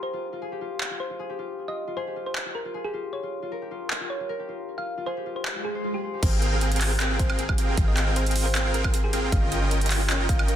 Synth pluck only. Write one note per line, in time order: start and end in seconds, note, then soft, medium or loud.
0.03 0.26 C5 medium
1.00 1.31 C5 medium
1.68 1.91 D#5 medium
1.97 2.20 C5 medium
2.26 2.49 C5 medium
2.55 2.78 A#4 medium
2.84 3.07 G#4 medium
3.13 3.36 C#5 medium
4.10 4.41 C#5 medium
4.78 5.00 F5 medium
5.06 5.29 C5 medium
5.36 5.59 C5 medium
5.65 5.88 G#4 medium
5.94 6.17 G4 medium
6.23 6.46 C5 loud
7.20 7.50 C5 medium
7.88 8.10 D#5 medium
8.16 8.39 C5 medium
8.46 8.68 C5 medium
8.74 8.97 A#4 medium
9.04 9.26 G#4 loud
9.32 9.55 F5 loud
10.29 10.56 F5 loud